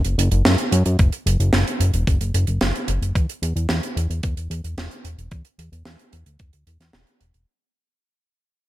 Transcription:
0.04 0.16 F#1 medium
0.04 closed hi-hat medium
0.18 0.29 F#1 medium
0.18 closed hi-hat loud
0.32 0.43 F#1 medium
0.32 closed hi-hat medium
0.45 0.56 F#2 loud
0.45 snare loud
0.45 closed hi-hat medium
0.58 closed hi-hat medium
0.72 0.83 F#2 medium
0.72 closed hi-hat loud
0.86 0.97 F#2 medium
0.86 closed hi-hat medium
0.99 1.10 F#1 loud
0.99 kick loud
0.99 closed hi-hat medium
1.12 closed hi-hat medium
1.26 1.37 F#1 medium
1.26 closed hi-hat loud
1.40 1.51 F#1 medium
1.40 closed hi-hat soft
1.53 1.64 F#1 loud
1.53 snare loud
1.53 closed hi-hat medium
1.67 closed hi-hat medium
1.80 1.91 F#1 medium
1.80 closed hi-hat loud
1.94 2.05 E1 medium
1.94 closed hi-hat medium
2.07 2.19 F#1 loud
2.07 kick loud
2.07 closed hi-hat medium
2.21 2.32 F#1 medium
2.21 closed hi-hat medium
2.34 2.46 F#1 medium
2.34 closed hi-hat loud
2.47 2.59 F#1 medium
2.47 closed hi-hat medium
2.61 2.73 F#1 medium
2.61 snare loud
2.61 closed hi-hat medium
2.75 closed hi-hat soft
2.88 3.00 F#1 loud
2.88 closed hi-hat loud
3.02 3.13 F#1 medium
3.02 closed hi-hat medium
3.15 3.27 E2 loud
3.15 kick loud
3.15 closed hi-hat medium
3.29 closed hi-hat medium
3.42 3.54 E2 medium
3.42 closed hi-hat loud
3.56 3.67 E2 medium
3.56 closed hi-hat medium
3.69 3.81 E2 loud
3.69 snare loud
3.69 closed hi-hat medium
3.83 closed hi-hat medium
3.96 4.08 E2 medium
3.96 closed hi-hat loud
4.10 4.21 E2 medium
4.10 closed hi-hat medium
4.23 4.35 E2 loud
4.23 kick loud
4.23 closed hi-hat medium
4.37 4.48 E2 medium
4.37 closed hi-hat medium
4.50 4.62 E2 medium
4.50 closed hi-hat medium
4.64 4.75 E2 medium
4.64 closed hi-hat medium
4.77 4.89 E1 loud
4.77 snare loud
4.77 closed hi-hat medium
4.91 closed hi-hat medium
5.04 5.16 E1 medium
5.04 closed hi-hat loud
5.18 5.29 E1 medium
5.18 closed hi-hat medium
5.31 5.43 E2 loud
5.31 kick loud
5.31 closed hi-hat medium
5.45 closed hi-hat soft
5.58 5.70 E2 medium
5.58 closed hi-hat medium
5.72 5.83 E2 medium
5.72 closed hi-hat medium
5.85 5.97 E2 loud
5.85 snare loud
5.85 closed hi-hat medium
5.99 closed hi-hat medium
6.13 6.24 E2 medium
6.13 closed hi-hat medium
6.26 6.37 D2 medium
6.26 closed hi-hat medium
6.39 6.51 E2 medium
6.39 kick loud
6.39 closed hi-hat medium
6.53 6.64 D2 medium
6.53 closed hi-hat medium
6.67 6.78 E2 medium
6.67 closed hi-hat medium
6.80 6.91 E2 medium
6.80 snare soft
6.80 closed hi-hat medium
6.93 7.05 E1 medium
6.93 snare loud
6.93 closed hi-hat medium
7.07 closed hi-hat medium
7.21 7.32 E1 medium
7.21 closed hi-hat loud
7.34 7.45 E1 medium
7.34 closed hi-hat soft

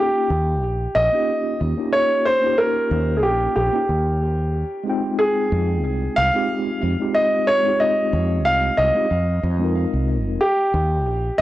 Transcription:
0.00 0.30 A#3 medium
0.00 0.30 C#4 medium
0.00 0.31 D#4 medium
0.00 0.31 F4 medium
0.00 0.31 G4 medium
0.00 0.98 G4 medium
0.30 0.63 D#2 medium
0.63 0.86 A#1 medium
0.95 1.08 A#1 medium
0.95 1.89 D#5 loud
1.12 1.74 A#3 medium
1.12 1.74 C#4 medium
1.12 1.74 D#4 medium
1.12 1.75 F4 medium
1.12 1.75 G4 medium
1.61 1.73 D#2 medium
1.77 2.39 A#3 medium
1.77 2.39 C#4 medium
1.77 2.39 D#4 medium
1.77 2.40 F4 medium
1.77 2.40 G4 medium
1.93 2.27 C#5 medium
2.25 2.59 C5 medium
2.41 3.68 A#3 medium
2.41 3.69 C#4 medium
2.41 3.70 D#4 medium
2.45 3.71 F4 medium
2.45 3.71 G4 medium
2.58 3.19 A#4 medium
2.91 3.23 D#2 medium
3.17 3.23 G#4 medium
3.23 3.47 A#1 medium
3.23 3.54 G4 medium
3.56 3.68 A#1 medium
3.56 4.82 G4 medium
3.73 3.82 A#3 medium
3.73 3.82 C#4 medium
3.73 3.83 D#4 medium
3.73 3.83 F4 medium
3.73 3.84 G4 medium
3.89 4.63 D#2 medium
4.84 6.29 G#3 medium
4.84 6.30 C4 medium
4.84 6.31 D#4 medium
4.88 6.31 F4 medium
4.88 6.32 G5 medium
5.19 6.20 G#4 medium
5.52 5.85 F2 loud
5.85 6.08 C2 medium
6.16 6.29 C2 medium
6.16 7.18 F5 loud
6.34 6.95 G#3 medium
6.34 6.96 C4 medium
6.34 6.96 D#4 medium
6.34 6.96 F4 medium
6.34 6.97 G4 medium
6.83 6.95 F2 medium
6.99 7.61 G#3 medium
6.99 7.61 C4 medium
6.99 7.61 D#4 medium
6.99 7.62 F4 medium
6.99 7.62 G4 medium
7.14 7.48 D#5 loud
7.47 7.81 C#5 medium
7.63 8.90 G#3 medium
7.63 8.91 C4 medium
7.63 8.92 D#4 medium
7.67 8.93 F4 medium
7.67 8.93 G4 medium
7.80 8.47 D#5 medium
8.13 8.46 F2 medium
8.45 8.68 C2 medium
8.45 8.79 F5 loud
8.77 8.90 C2 medium
8.77 10.04 D#5 loud
8.95 9.04 G#3 medium
8.95 9.04 C4 medium
8.95 9.05 D#4 medium
8.95 9.05 F4 medium
8.95 9.05 G4 medium
9.11 9.43 F2 medium
9.43 9.84 F2 loud
9.59 10.38 G#3 medium
9.59 10.39 C4 medium
9.59 10.39 D#4 medium
9.63 10.40 F4 medium
9.63 10.41 A#4 medium
9.94 10.26 C2 medium
10.26 10.36 F1 medium
10.41 11.41 G4 medium
10.74 11.06 D#2 medium
11.06 11.29 A#1 medium
11.38 11.41 D#5 loud

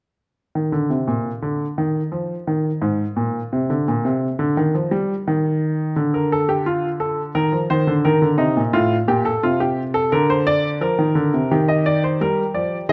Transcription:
0.55 0.73 D#3 medium
0.72 0.90 D3 medium
0.90 1.08 C3 medium
1.07 1.30 A#2 medium
1.42 1.64 D3 medium
1.78 2.00 D#3 medium
2.12 2.34 F3 medium
2.47 2.69 D#3 medium
2.82 3.04 G#2 medium
3.16 3.38 A#2 medium
3.53 3.70 C3 medium
3.70 3.87 D3 medium
3.88 4.05 A#2 medium
4.05 4.26 C3 medium
4.39 4.56 D3 medium
4.57 4.74 D#3 medium
4.75 4.91 F3 medium
4.91 5.13 G3 medium
5.28 5.95 D#3 medium
5.96 7.31 D3 medium
6.14 6.31 A#4 medium
6.32 6.49 A4 medium
6.49 6.66 G4 medium
6.66 6.88 F4 medium
7.00 7.22 A4 medium
7.35 7.52 D#3 medium
7.35 7.56 A#4 medium
7.52 7.69 F3 medium
7.70 7.87 D#3 medium
7.70 7.91 C5 medium
7.87 8.04 D3 medium
8.05 8.22 D#3 medium
8.05 8.26 A#4 medium
8.22 8.39 D3 medium
8.38 8.55 C3 medium
8.38 8.60 D#4 medium
8.57 8.73 A#2 medium
8.73 8.95 A2 medium
8.73 8.95 F4 medium
9.08 9.29 A#2 medium
9.08 9.25 G4 medium
9.25 9.42 A4 medium
9.43 10.10 C3 medium
9.43 9.60 F4 medium
9.60 9.82 G4 medium
9.94 10.11 A4 medium
10.12 10.79 D3 medium
10.12 10.29 A#4 medium
10.30 10.46 C5 medium
10.47 10.68 D5 medium
10.81 10.98 F3 medium
10.81 11.49 A#4 medium
10.99 11.15 D#3 medium
11.15 11.32 D3 medium
11.34 11.50 C3 medium
11.51 12.18 D#3 medium
11.51 12.86 G4 medium
11.68 11.85 D#5 medium
11.86 12.02 D5 medium
12.04 12.20 C5 medium
12.21 12.42 G3 medium
12.21 12.42 A#4 medium
12.54 12.76 F3 medium
12.54 12.76 D5 medium
12.89 12.93 D#3 medium
12.89 12.93 G#4 medium
12.89 12.93 D#5 medium

